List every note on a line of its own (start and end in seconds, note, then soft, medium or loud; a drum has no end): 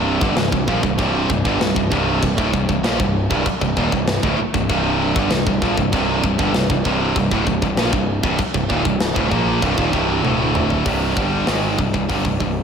0.00 0.18 C1 loud
0.00 0.20 C2 medium
0.00 0.20 G2 loud
0.00 0.21 C3 loud
0.21 0.35 G1 medium
0.21 0.35 G2 medium
0.21 0.36 D3 loud
0.21 kick loud
0.36 0.51 C1 medium
0.36 0.51 C2 medium
0.36 0.51 G2 medium
0.36 snare loud
0.36 crash medium
0.52 0.67 C1 medium
0.52 0.67 C2 medium
0.52 0.68 G2 medium
0.52 kick loud
0.68 0.82 A#1 loud
0.68 0.82 A#2 medium
0.68 0.83 F3 loud
0.68 kick medium
0.83 0.97 C1 medium
0.83 0.97 C2 medium
0.83 0.97 G2 medium
0.83 kick medium
0.98 1.27 C1 medium
0.98 1.28 C2 medium
0.98 1.28 G2 medium
0.98 1.29 C3 loud
0.98 kick loud
0.98 crash medium
1.30 1.44 C1 medium
1.30 1.45 C2 medium
1.30 1.44 G2 medium
1.30 kick medium
1.45 1.59 G1 medium
1.45 1.60 G2 medium
1.45 1.60 D3 loud
1.45 kick medium
1.60 1.74 C1 medium
1.60 1.76 C2 medium
1.60 1.76 G2 medium
1.60 snare loud
1.60 crash medium
1.76 1.90 C1 medium
1.76 1.91 C2 medium
1.76 1.91 G2 medium
1.76 kick medium
1.92 2.20 C1 medium
1.92 2.22 C2 medium
1.92 2.22 G2 loud
1.92 2.22 C3 loud
1.92 kick medium
2.22 2.37 C1 medium
2.22 2.38 C2 medium
2.22 2.38 G2 medium
2.22 kick medium
2.22 crash medium
2.38 2.52 D1 loud
2.38 2.53 D2 medium
2.38 2.53 A2 loud
2.38 kick medium
2.53 2.68 C1 medium
2.53 2.68 C2 medium
2.53 2.69 G2 medium
2.53 kick medium
2.69 2.83 C1 medium
2.69 2.84 C2 medium
2.69 2.85 G2 medium
2.69 kick medium
2.83 2.98 A#1 loud
2.83 2.99 A#2 medium
2.83 2.99 F3 loud
2.83 snare loud
2.83 crash medium
3.00 3.29 C1 medium
3.00 3.24 C2 medium
3.00 3.25 G2 medium
3.00 kick loud
3.31 3.45 C1 medium
3.31 3.45 C2 loud
3.31 3.46 G2 loud
3.31 kick loud
3.46 muted picked electric bass stroke soft
3.46 muted distorted electric guitar stroke medium
3.46 kick loud
3.46 crash medium
3.61 3.76 C1 medium
3.61 3.76 C2 medium
3.61 3.77 G2 medium
3.61 kick medium
3.77 3.91 D#1 medium
3.77 3.91 D#2 loud
3.77 3.92 A#2 loud
3.77 kick medium
3.92 4.21 C1 medium
3.92 4.17 C2 medium
3.92 4.17 G2 medium
3.92 kick medium
4.08 snare loud
4.08 crash medium
4.23 4.38 D1 loud
4.23 4.38 D2 medium
4.23 4.38 A2 loud
4.23 kick loud
4.38 muted picked electric bass stroke soft
4.38 muted distorted electric guitar stroke medium
4.54 4.69 C1 medium
4.54 4.68 C2 medium
4.54 4.69 G2 medium
4.54 kick loud
4.69 5.13 C1 loud
4.69 5.15 C2 loud
4.69 5.15 G2 loud
4.69 5.16 C3 loud
4.69 kick loud
4.69 crash medium
5.16 5.30 G1 medium
5.16 5.31 G2 medium
5.16 5.31 D3 loud
5.16 kick loud
5.31 5.46 C1 medium
5.31 5.46 C2 medium
5.31 5.46 G2 medium
5.31 snare loud
5.31 crash medium
5.47 5.61 C1 medium
5.47 5.62 C2 medium
5.47 5.62 G2 medium
5.47 kick medium
5.62 5.77 A#1 medium
5.62 5.77 A#2 loud
5.62 5.77 F3 loud
5.62 kick medium
5.77 5.92 C1 medium
5.77 5.93 C2 medium
5.77 5.93 G2 medium
5.77 kick medium
5.93 6.22 C1 medium
5.93 6.23 C2 medium
5.93 6.24 G2 loud
5.93 6.24 C3 loud
5.93 kick loud
5.93 crash medium
6.24 6.38 C1 medium
6.24 6.39 C2 medium
6.24 6.38 G2 medium
6.24 kick medium
6.39 6.53 G1 medium
6.39 6.54 G2 medium
6.39 6.55 D3 medium
6.39 kick medium
6.54 6.69 C1 medium
6.54 6.70 C2 medium
6.54 6.70 G2 medium
6.54 snare loud
6.54 crash medium
6.70 6.84 C1 medium
6.70 6.85 C2 medium
6.70 6.86 G2 medium
6.70 kick medium
6.85 7.14 C1 medium
6.85 7.16 C2 medium
6.85 7.16 G2 medium
6.85 7.16 C3 medium
6.85 kick medium
7.16 7.30 C1 medium
7.16 7.31 C2 medium
7.16 7.32 G2 medium
7.16 kick medium
7.16 crash medium
7.31 7.46 D1 loud
7.31 7.46 D2 medium
7.31 7.47 A2 medium
7.31 kick loud
7.47 7.61 C1 medium
7.47 7.62 C2 medium
7.47 7.62 G2 medium
7.47 kick medium
7.62 7.76 C1 medium
7.62 7.77 C2 medium
7.62 7.78 G2 medium
7.62 kick medium
7.76 7.91 A#1 medium
7.76 7.92 A#2 loud
7.76 7.93 F3 loud
7.76 snare loud
7.76 crash medium
7.93 8.22 C1 medium
7.93 8.18 C2 medium
7.93 8.18 G2 medium
7.93 kick medium
8.23 8.38 C1 medium
8.23 8.38 C2 loud
8.23 8.39 G2 loud
8.23 kick loud
8.38 muted picked electric bass stroke soft
8.38 muted distorted electric guitar stroke medium
8.38 kick loud
8.38 crash medium
8.54 8.69 C1 medium
8.54 8.69 C2 medium
8.54 8.70 G2 medium
8.54 kick medium
8.70 8.84 D#1 loud
8.70 8.85 D#2 medium
8.70 8.85 A#2 loud
8.70 kick medium
8.85 9.14 C1 medium
8.85 9.10 C2 medium
8.85 9.10 G2 medium
8.85 kick medium
9.00 snare loud
9.00 crash medium
9.16 9.31 D1 medium
9.16 9.30 D2 loud
9.16 9.31 A2 medium
9.16 kick loud
9.30 9.60 A#1 loud
9.30 9.61 A#2 medium
9.30 9.61 F3 loud
9.30 9.62 A#3 loud
9.30 kick medium
9.62 9.77 C1 loud
9.62 9.77 C2 medium
9.62 9.77 G2 loud
9.62 kick loud
9.62 crash medium
9.77 9.92 D#1 loud
9.77 9.92 D#2 medium
9.77 9.93 A#2 medium
9.77 kick medium
9.93 10.22 C1 medium
9.93 10.23 C2 medium
9.93 10.23 G2 medium
9.93 10.24 C3 medium
9.93 kick medium
10.24 10.82 D1 loud
10.24 10.85 D2 loud
10.24 10.85 A2 loud
10.24 10.86 D3 loud
10.24 high tom medium
10.55 mid tom medium
10.70 floor tom medium
10.86 11.15 C1 medium
10.86 11.16 C2 medium
10.86 11.15 G2 loud
10.86 11.16 C3 medium
10.86 kick loud
10.86 open hi-hat medium
11.16 11.46 G1 medium
11.16 11.46 G2 medium
11.16 11.47 D3 medium
11.16 11.47 G3 loud
11.16 kick loud
11.47 11.76 G#1 medium
11.47 11.77 G#2 medium
11.47 11.78 D#3 medium
11.47 11.79 G#3 loud
11.47 snare medium
11.47 open hi-hat medium
11.78 11.93 C1 medium
11.78 11.93 C2 medium
11.78 11.94 G2 medium
11.78 kick medium
11.94 12.08 C1 medium
11.94 12.09 C2 medium
11.94 12.08 G2 medium
11.94 kick medium
12.09 12.24 G1 medium
12.09 12.24 G2 medium
12.09 12.24 D3 loud
12.09 kick medium
12.09 open hi-hat soft
12.25 12.39 C1 medium
12.25 12.40 C2 medium
12.25 12.41 G2 medium
12.25 kick medium
12.40 12.63 C1 medium
12.40 12.63 C2 medium
12.40 12.63 G2 medium
12.40 kick medium